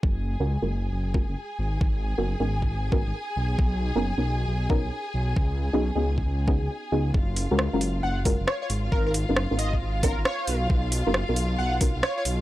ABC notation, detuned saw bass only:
X:1
M:4/4
L:1/16
Q:"Swing 16ths" 1/4=135
K:F#
V:1 name="Detuned saw bass" clef=bass
F,,,3 C,,2 F,,,3 F,,,3 F,,, z2 G,,,2 | G,,,3 F,,,2 G,,,3 G,,,3 G,,, z2 B,,,2 | B,,,3 F,,,2 B,,,3 B,,,3 B,,, z2 B,,,2 | C,,3 B,,,2 C,,3 C,,3 C,, z2 C,,2 |
F,,,3 C,,2 F,,,3 F,,,3 F,,, z2 G,,,2 | G,,,3 F,,,2 G,,,3 G,,,3 G,,, z2 B,,,2 | B,,,3 F,,,2 B,,,3 B,,,3 B,,, z2 B,,,2 |]